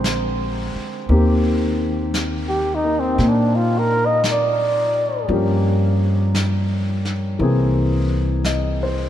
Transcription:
Already playing: A#1 D3 G#3 C4 G4
0.04 brush sweep, snare, hi-hat pedal
0.75 muted upright bass stroke
1.09 D#2 D#3 A#3 C4 G4, brush sweep
2.14 brush sweep, snare, hi-hat pedal
2.49 G4
2.75 D#4
2.84 A#3 D#4
3.00 C4
3.18 A#2, brush sweep, snare
3.29 D4
3.56 F4
3.79 A#4
4.06 D#5
4.24 brush sweep, snare, hi-hat pedal
4.31 D5
5.29 G2 F3 A#3 C#4 G4, brush sweep
6.35 brush sweep, snare, hi-hat pedal
7.05 snare
7.39 C2 E3 A#3 C4, brush sweep
7.43 G#4
8.44 D#5, brush sweep, snare, hi-hat pedal
8.83 C5

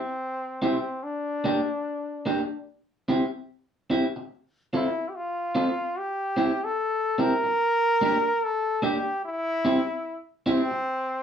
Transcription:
Already playing: C4
0.62 C4 E4 G4
1.04 D4
1.44 A#3 D4 G4
2.26 A#3 D4 G4
3.08 C4 E4 G4
3.90 C4 E4 G4
4.16 muted clean electric guitar stroke
4.73 C4 E4 F4 A4
5.09 G4
5.17 F4
5.55 C4 F4 A4
5.98 G4
6.37 C4 E4 G4
6.64 A4
7.18 C4 E4 G4 A#4
7.44 muted clean electric guitar stroke
8.01 A#3 D4 G4
8.44 A4
8.82 A#3 D4 G4
9.25 E4
9.65 C4 E4 G4
10.46 C4 E4 G4
10.71 muted clean electric guitar stroke

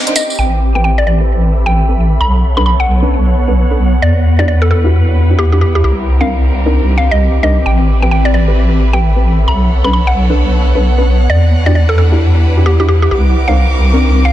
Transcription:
Already playing: C4 G4 A#4 D#5 D6
0.07 D4 D#4 A#4 C5, closed hi-hat
0.16 D#5, open hi-hat, tambourine
0.30 tambourine
0.39 A1 C4 E4 G4 A4 B4 G5
0.54 E5
0.75 C4 G4 A4 B4 G5
0.83 G5 B5
0.98 D5
1.07 D5
1.21 C4 G4 A4 B4
1.66 C4 G4 A4 B4 G5
1.89 C4 G4 A4 B4
2.20 B1 B3 A4 C#5 F#5 B5
2.51 C#5
2.57 C#4 D4 A4 B4 B5
2.66 B5
2.80 F#5
3.02 C#4 D4 A4 B4
3.48 C#4 D4 A4 B4
3.71 C#4 D4 A4 B4
4.02 E2 G3 E4 B4 D5
4.27 B4
4.39 D4 E4 F#4 G4 D5
4.48 D5 F#5
4.62 A4
4.71 A4
4.84 D4 E4 F#4 G4
5.30 D4 E4 F#4 G4
5.39 G4
5.52 D4 E4 F#4 G4
5.61 G4
5.75 G4
5.84 C2 C4 G4 A#4
5.94 G4
6.21 C4 D4 D#4 A#4 F5
6.32 D6
6.66 C4 D4 D#4 A#4
6.98 F5
7.11 D#5
7.43 C4 D4 D#4 A#4 D#5
7.66 A1 C4 E4 A4 B4 G5
7.82 E5 B5
8.02 C4 G4 A4 B4 G5
8.11 G5
8.25 D5
8.34 D5
8.48 C4 G4 A4 B4
8.93 C4 G4 A4 B4 G5
9.16 C4 G4 A4 B4
9.48 B1 B3 A4 C#5 F#5 B5
9.67 C#5
9.84 C#4 D4 A4 B4 B5
9.93 B5
10.07 F#5
10.30 C#4 D4 A4 B4
10.75 C#4 D4 A4 B4
10.98 C#4 D4 A4 B4
11.29 E2 G3 D4 E4 B4 D5
11.58 B4
11.66 D4 E4 F#4 G4 D5
11.75 D5
11.89 A4 F#5
11.98 A4
12.12 D4 E4 F#4 G4
12.57 D4 E4 F#4 G4
12.66 G4
12.80 D4 E4 F#4 G4
12.89 G4
13.02 G4
13.11 C2 C4 G4 A#4 D6
13.20 D6
13.36 G4
13.48 C4 D4 D#4 A#4 F5
13.93 C4 D4 D#4 A#4
14.25 F5

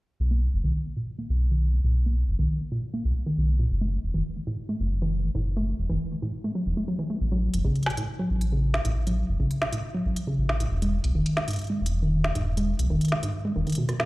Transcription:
0.20 B1
0.31 A#3
0.53 F#1 F#3
0.64 B1 D#3
0.86 B2
0.97 A#2
1.18 A#3
1.29 B1
1.40 F#3
1.51 D#3
1.73 B2
1.84 B1 A#2
2.06 A#3
2.28 F#1 F#3
2.39 B1 D#3
2.61 B2
2.72 A#2
2.94 A#3
3.05 B1
3.16 F#3
3.27 D#3
3.37 B1
3.48 B2
3.59 A#2
3.70 F#1
3.81 A3
4.03 E1 F#3
4.14 F#1 E3
4.36 C#3
4.47 A2
4.69 A3
4.80 F#1
4.91 F#3
5.02 E3
5.24 C#3
5.35 F#1 A2
5.57 A3
5.78 E1 F#3
5.89 F#1 E3
6.11 C#3
6.22 A2
6.44 A3
6.55 F#3
6.66 E1 E3
6.77 A3
6.88 F#3
6.99 E3
7.10 A3
7.21 A1
7.32 F#3
7.54 F#1 E3, closed hi-hat
7.64 A1 C#3
7.76 closed hi-hat
7.83 B2, snare, closed hi-hat
7.90 closed hi-hat
7.97 A2, closed hi-hat
8.19 F#3
8.30 A1
8.41 E3, closed hi-hat
8.52 C#3
8.74 B2, snare
8.85 A1 A2, closed hi-hat
9.07 F#3, closed hi-hat
9.29 F#1 E3
9.40 A1 C#3
9.51 closed hi-hat
9.62 B2, snare
9.73 A2, closed hi-hat
9.94 F#3
10.05 A1
10.16 E3, closed hi-hat
10.27 C#3
10.38 A1
10.49 B2, snare
10.60 A2, closed hi-hat
10.71 E1
10.82 G#3, closed hi-hat
11.04 B1 E3, closed hi-hat
11.15 E1 D#3
11.26 closed hi-hat
11.37 B2, snare
11.48 G#2, closed hi-hat
11.51 closed hi-hat
11.53 closed hi-hat
11.56 closed hi-hat
11.59 closed hi-hat
11.61 closed hi-hat
11.64 closed hi-hat
11.67 G#3, closed hi-hat
11.81 E1
11.86 closed hi-hat
11.92 E3
12.03 D#3
12.24 B2, snare
12.35 E1 G#2, closed hi-hat
12.57 G#3, closed hi-hat
12.79 B1 E3, closed hi-hat
12.90 E1 D#3
13.01 closed hi-hat
13.05 closed hi-hat
13.08 B2, snare, closed hi-hat
13.23 G#2, closed hi-hat
13.45 G#3
13.56 E1 D#3
13.67 D#3, closed hi-hat
13.70 closed hi-hat
13.72 closed hi-hat
13.75 B2, closed hi-hat
13.89 B2, cross-stick, closed hi-hat
14.00 B2, cross-stick, snare

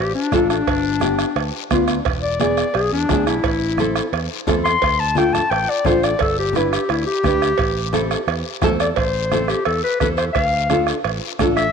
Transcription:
Already playing: G4
0.00 A1
0.15 D4
0.32 A1 D4 F4 A4, bombo low, bombo rim, high conga, low conga, low timbale, short guiro
0.50 D4, bombo rim, short guiro
0.67 G1, bombo low, bombo rim, cowbell, high conga, long guiro
1.00 B3 D4 G4, bombo rim, high conga, short guiro
1.19 bombo rim, short guiro
1.36 D2, bombo rim, cowbell, high conga, long guiro
1.70 D2 B3 D4 F4, bombo low, bombo rim, high conga, short guiro
1.88 bombo rim, short guiro
2.05 E1, bombo low, bombo rim, cowbell, high conga, long guiro
2.23 D5
2.39 B3 E4 G#4 D5, bombo rim, high conga, short guiro
2.57 bombo rim, short guiro
2.74 B1 G#4, bombo rim, cowbell, high conga, long guiro
2.92 E2 D4
3.09 D2 B3 E4 G#4, bombo low, bombo rim, high conga, low conga, low timbale, short guiro
3.27 B1 E4, bombo rim, short guiro
3.44 A1, bombo low, bombo rim, cowbell, high conga, long guiro
3.77 C4 E4 A4, bombo rim, high conga, short guiro
3.96 bombo rim, short guiro
4.13 E2, bombo rim, cowbell, high conga, long guiro
4.47 E2 C4 E4 A4, bombo low, bombo rim, high conga, low timbale, short guiro
4.64 C6, bombo rim, short guiro
4.81 D2, bombo low, bombo rim, cowbell, high conga, long guiro
5.00 A5
5.15 D4 F4 A4 G5, bombo rim, high conga, short guiro
5.33 A5, bombo rim, low conga, short guiro
5.50 A1 G5, bombo rim, cowbell, high conga, long guiro
5.70 D5
5.85 A1 D4 F4 A4 C5, bombo low, bombo rim, high conga, low conga, short guiro
6.03 D5, bombo rim, short guiro
6.19 G1 A4, bombo low, bombo rim, cowbell, high conga, long guiro
6.39 G4
6.53 D4 E4 G4 B4, bombo rim, high conga, short guiro
6.73 G4, bombo rim, short guiro
6.89 D2 E4, bombo rim, cowbell, high conga, long guiro
7.07 G4
7.24 D2 D4 G4 B4, bombo low, bombo rim, high conga, short guiro
7.42 bombo rim, short guiro
7.58 A1, bombo low, bombo rim, cowbell, high conga, long guiro
7.92 C4 E4 A4, bombo rim, high conga, short guiro
8.11 bombo rim, short guiro
8.27 E2, bombo rim, cowbell, high conga, long guiro
8.62 E2 C4 E4 A4, bombo low, bombo rim, high conga, low conga, low timbale, short guiro
8.80 D5, bombo rim, short guiro
8.96 A1 C5, bombo low, bombo rim, cowbell, high conga, long guiro
9.32 C4 E4 A4, bombo rim, high conga, short guiro
9.48 G4, bombo rim, short guiro
9.65 E2 A4, bombo rim, cowbell, high conga, long guiro
9.84 B4
10.00 E2 C4 E4 A4 B4, bombo low, bombo rim, high conga, short guiro
10.17 C5, bombo rim, short guiro
10.33 D2 F5, bombo low, bombo rim, cowbell, high conga, long guiro
10.69 D4 F4 A4, bombo rim, high conga, short guiro
10.87 bombo rim, short guiro
11.04 A1, bombo rim, cowbell, long guiro
11.39 A1 D4 F4 A4, bombo low, bombo rim, high conga, low conga, low timbale, short guiro
11.56 E5, bombo rim, short guiro

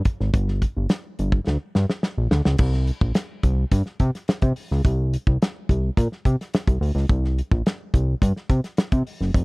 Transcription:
0.05 kick, closed hi-hat
0.20 G#1, snare
0.34 G1, kick, closed hi-hat
0.48 snare
0.62 kick, closed hi-hat
0.77 G1
0.89 snare, closed hi-hat
1.19 G1, closed hi-hat
1.32 kick
1.47 D2, snare
1.75 G2, snare
1.90 snare
2.03 snare
2.17 A#1
2.31 D2, snare
2.45 C#2, snare
2.58 C2, kick, crash
2.74 snare
2.87 closed hi-hat
3.01 A#1, kick
3.15 snare, closed hi-hat
3.43 C2, kick, closed hi-hat
3.72 G2, kick, closed hi-hat
3.86 snare
4.00 C3, kick, closed hi-hat
4.15 snare, closed hi-hat
4.28 snare, closed hi-hat
4.42 C3, kick, closed hi-hat
4.56 open hi-hat
4.71 C#2, snare
4.85 C2, kick, closed hi-hat
5.14 closed hi-hat
5.27 C2, kick
5.42 snare, closed hi-hat
5.69 C2, kick, closed hi-hat
5.97 A#2, kick, closed hi-hat
6.12 snare
6.25 C3, kick, closed hi-hat
6.41 snare, closed hi-hat
6.54 snare, closed hi-hat
6.67 C2, kick, closed hi-hat
6.81 D2, open hi-hat
6.95 C#2, snare
7.09 C2, kick, closed hi-hat
7.24 snare
7.38 closed hi-hat
7.51 A#1, kick
7.66 snare, closed hi-hat
7.94 C2, kick, closed hi-hat
8.22 G2, kick, closed hi-hat
8.36 snare
8.50 C3, kick, closed hi-hat
8.64 snare, closed hi-hat
8.77 snare, closed hi-hat
8.92 C3, kick, closed hi-hat
9.07 open hi-hat
9.21 F#1, snare
9.34 F1, kick, closed hi-hat

